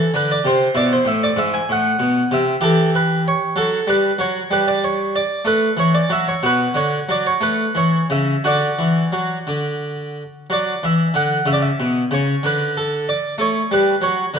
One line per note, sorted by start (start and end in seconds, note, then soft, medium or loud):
0.00 0.71 E4 soft
0.14 0.36 D3 medium
0.14 0.30 B4 medium
0.31 0.45 D5 medium
0.45 0.67 C3 medium
0.45 0.76 C5 medium
0.75 0.97 B2 medium
0.75 1.64 E4 soft
0.75 0.91 D5 medium
0.93 1.07 C5 medium
1.05 1.28 A2 medium
1.05 1.22 E5 medium
1.23 1.38 D5 medium
1.36 1.59 G#2 medium
1.36 1.53 E5 medium
1.54 1.69 G#5 medium
1.69 1.91 A2 medium
1.69 2.32 F#5 medium
1.99 2.22 B2 medium
2.31 2.54 C3 medium
2.31 2.59 E5 medium
2.61 3.29 E3 medium
2.61 3.51 G4 soft
2.61 2.89 A4 medium
2.95 3.21 B4 medium
3.28 3.58 C#5 medium
3.56 3.78 F#3 medium
3.56 3.88 A4 medium
3.87 4.10 G3 medium
3.87 4.15 B4 medium
4.19 4.41 F#3 medium
4.19 4.51 C#5 medium
4.51 5.18 G3 medium
4.51 4.67 B4 loud
4.68 4.82 D5 medium
4.84 5.14 C#5 medium
5.16 5.46 D5 medium
5.45 5.67 A3 medium
5.45 5.73 B4 loud
5.77 5.99 E3 medium
5.77 5.93 C#5 medium
5.94 6.09 D5 medium
6.10 6.32 F#3 medium
6.10 6.26 E5 medium
6.28 6.42 C#5 medium
6.43 6.65 B2 medium
6.43 7.37 F#4 soft
6.43 6.71 B4 medium
6.74 6.98 D3 medium
6.74 7.03 C#5 medium
7.09 7.32 F#3 medium
7.09 7.25 D5 medium
7.27 7.41 C#5 medium
7.41 7.65 A3 medium
7.41 7.75 B4 medium
7.75 7.99 E3 medium
7.75 8.05 C#5 medium
8.10 8.34 C#3 medium
8.10 8.45 E5 medium
8.44 8.68 D3 medium
8.44 10.46 F#4 soft
8.44 9.92 D5 medium
8.79 9.03 E3 soft
9.12 9.37 F#3 soft
9.47 10.21 D3 medium
10.50 10.73 F#3 medium
10.50 10.83 D5 medium
10.83 11.06 E3 medium
10.83 11.16 E5 medium
11.14 11.37 D3 medium
11.14 11.47 F#5 medium
11.46 11.69 C#3 medium
11.46 11.54 E5 medium
11.53 11.60 D5 medium
11.62 12.04 E5 medium
11.80 12.02 B2 medium
12.11 12.33 C#3 medium
12.11 12.43 C#5 medium
12.43 13.11 D3 medium
12.43 12.75 B4 medium
12.77 13.06 A4 medium
13.09 13.34 D5 medium
13.38 13.60 A3 medium
13.38 13.70 C#5 medium
13.71 13.93 G3 medium
13.71 14.02 B4 medium
14.01 14.24 F#3 medium
14.01 14.29 C#5 medium
14.34 14.39 D3 medium